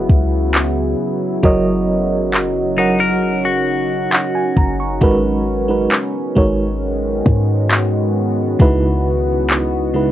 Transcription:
0.00 4.97 C#3 medium
0.00 1.43 F#3 medium
0.00 4.98 F#3 medium
0.00 1.39 B3 medium
0.00 1.40 E4 medium
0.00 1.44 F#4 medium
0.00 1.42 G#4 medium
0.00 1.45 G#4 medium
0.00 1.45 B4 medium
0.00 1.46 F#5 medium
0.09 0.95 C#2 loud
0.09 kick medium
0.55 clap loud
1.43 4.08 F#1 loud
1.43 2.52 F#3 loud
1.43 8.56 C#4 medium
1.43 4.98 D#4 medium
1.43 4.98 F#4 medium
1.43 2.52 F#4 medium
1.43 2.52 A#4 medium
1.43 2.52 C#5 medium
1.43 2.53 D#5 loud
1.43 kick loud
2.34 clap loud
2.77 4.22 F#3 medium
2.77 2.99 D#4 medium
2.77 4.22 F#4 medium
2.77 4.22 A#4 medium
2.77 4.23 C#5 medium
2.77 4.11 F#5 medium
3.00 3.43 A#4 medium
3.45 4.75 F#4 medium
4.13 4.34 F#5 medium
4.13 clap loud
4.35 4.56 G#5 medium
4.57 5.00 F#1 loud
4.57 4.78 A#5 medium
4.57 kick medium
4.80 5.22 C#6 medium
5.01 5.87 G#1 loud
5.01 8.56 D#3 medium
5.01 5.55 G#3 loud
5.01 8.56 G#3 medium
5.01 10.12 B3 medium
5.01 5.56 D#4 medium
5.01 10.12 F#4 medium
5.01 5.56 F#4 medium
5.01 5.56 A#4 medium
5.01 5.57 B4 loud
5.01 kick loud
5.68 6.23 G#3 medium
5.68 6.23 D#4 medium
5.68 6.23 F#4 medium
5.68 6.24 A#4 medium
5.68 6.24 B4 medium
5.92 clap loud
6.35 7.22 G#1 loud
6.35 7.80 G#3 medium
6.35 7.80 D#4 medium
6.35 7.81 F#4 medium
6.35 7.81 A#4 medium
6.35 7.81 C#5 medium
6.35 kick medium
7.26 8.56 G#2 loud
7.26 kick medium
7.71 clap loud
8.59 10.12 C#2 loud
8.59 9.68 C#3 medium
8.59 10.12 C#3 medium
8.59 10.12 E3 medium
8.59 9.68 G#3 medium
8.59 9.68 D#4 medium
8.59 9.69 E4 medium
8.59 9.69 F#4 medium
8.59 9.69 B4 loud
8.59 10.12 D#5 medium
8.59 kick loud
9.50 clap loud
9.94 10.12 C#3 medium
9.94 10.12 G#3 medium
9.94 10.12 D#4 medium
9.94 10.12 E4 medium
9.94 10.12 F#4 medium
9.94 10.12 B4 medium

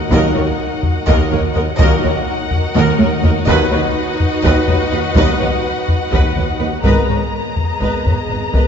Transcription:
0.00 1.75 D#4 medium
0.00 1.75 F#4 medium
0.00 1.75 A#4 medium
0.00 1.75 D#5 loud
0.00 1.76 F#5 medium
0.10 0.18 D#2 loud
0.10 0.19 D#2 loud
0.10 0.28 A#2 loud
0.10 0.28 F#3 medium
0.10 0.27 A#3 medium
0.10 0.27 D#4 medium
0.10 0.34 A#4 loud
0.10 0.33 D#5 loud
0.10 taiko loud
0.35 0.43 D#2 medium
0.35 0.44 D#2 medium
0.35 0.44 A#4 medium
0.35 0.43 C#5 medium
0.83 taiko low medium
1.06 1.15 D#2 loud
1.06 1.16 D#2 loud
1.06 1.30 A#4 loud
1.06 1.29 D#5 loud
1.06 taiko medium
1.31 1.40 D#2 medium
1.31 1.40 A#4 medium
1.31 1.39 C#5 medium
1.31 taiko low medium
1.55 1.64 D#2 medium
1.55 1.64 A#4 medium
1.55 1.63 D#5 medium
1.79 1.87 D#2 loud
1.79 1.96 A#2 loud
1.79 1.96 F#3 loud
1.79 1.97 A#3 loud
1.79 6.81 D#4 loud
1.79 1.97 D#4 loud
1.79 6.81 F#4 loud
1.79 3.44 A#4 loud
1.79 2.02 A#4 loud
1.79 2.01 D#5 loud
1.79 6.81 D#5 loud
1.79 3.45 F#5 loud
1.79 taiko loud
2.03 2.11 D#2 medium
2.03 2.12 A#4 medium
2.03 2.12 C#5 medium
2.51 taiko low medium
2.75 2.84 D#2 loud
2.75 2.98 A#4 loud
2.75 2.98 D#5 loud
2.75 taiko high loud
2.99 3.07 D#2 medium
2.99 3.08 D#2 medium
2.99 3.08 A#4 medium
2.99 3.07 C#5 medium
2.99 taiko high loud
3.23 3.31 D#2 medium
3.23 3.32 D#2 medium
3.23 3.33 A#4 medium
3.23 3.31 D#5 medium
3.23 taiko low loud
3.47 3.55 D#2 loud
3.47 3.56 D#2 loud
3.47 3.65 D#3 loud
3.47 3.65 F#3 loud
3.47 3.65 B3 medium
3.47 3.65 F#4 medium
3.47 6.85 B4 loud
3.47 3.70 B4 loud
3.47 3.70 D#5 loud
3.47 6.81 F#5 loud
3.47 taiko loud
3.71 3.79 D#2 medium
3.71 3.80 D#2 medium
3.71 3.81 B4 medium
3.71 3.80 C#5 medium
4.20 taiko low medium
4.44 4.52 D#2 loud
4.44 4.67 B4 loud
4.44 4.66 D#5 loud
4.44 taiko medium
4.67 4.76 D#2 medium
4.67 4.77 B4 medium
4.67 4.75 C#5 medium
4.67 taiko low medium
4.91 5.00 D#2 medium
4.91 5.00 B4 medium
4.91 4.99 D#5 medium
5.15 5.24 D#2 loud
5.15 5.33 D#3 medium
5.15 5.33 F#3 medium
5.15 5.33 B3 medium
5.15 5.33 F#4 medium
5.15 5.38 B4 loud
5.15 5.38 D#5 loud
5.15 taiko loud
5.39 5.47 D#2 medium
5.39 5.48 D#2 medium
5.39 5.48 B4 medium
5.39 5.48 C#5 medium
5.88 taiko low medium
6.12 6.20 D#2 medium
6.12 6.20 D#2 loud
6.12 6.35 B4 medium
6.12 6.35 D#5 medium
6.12 taiko medium
6.36 6.44 D#2 medium
6.36 6.44 B4 medium
6.36 6.45 C#5 medium
6.36 taiko low medium
6.60 6.68 D#2 medium
6.60 6.69 D#2 medium
6.60 6.68 B4 medium
6.60 6.69 D#5 medium
6.83 6.91 G#1 medium
6.83 6.93 G#2 medium
6.83 7.01 D#3 medium
6.83 7.01 G#3 medium
6.83 7.01 B3 medium
6.83 8.67 B3 medium
6.83 8.67 G#4 medium
6.83 7.01 A#4 medium
6.83 8.67 A#4 medium
6.83 7.07 B4 medium
6.83 8.67 D#5 medium
6.83 7.07 D#5 medium
6.83 8.67 A#5 medium
6.83 taiko loud
7.08 7.16 G#1 medium
7.08 7.17 G#2 medium
7.08 7.16 B4 medium
7.08 7.17 C#5 medium
7.57 taiko low medium
7.81 7.89 G#1 medium
7.81 7.89 G#2 medium
7.81 8.03 B4 medium
7.81 8.03 D#5 medium
7.81 taiko medium
8.05 8.13 G#1 soft
8.05 8.14 G#2 soft
8.05 8.14 B4 soft
8.05 8.14 C#5 soft
8.05 taiko low medium
8.30 8.38 G#1 soft
8.30 8.38 G#2 soft
8.30 8.38 B4 soft
8.30 8.38 D#5 soft
8.52 8.61 G#1 medium
8.52 8.61 G#2 medium
8.52 8.67 D#3 medium
8.52 8.67 G#3 medium
8.52 8.67 B3 medium
8.52 8.67 A#4 medium
8.52 8.67 B4 medium
8.52 8.67 D#5 medium
8.52 taiko medium

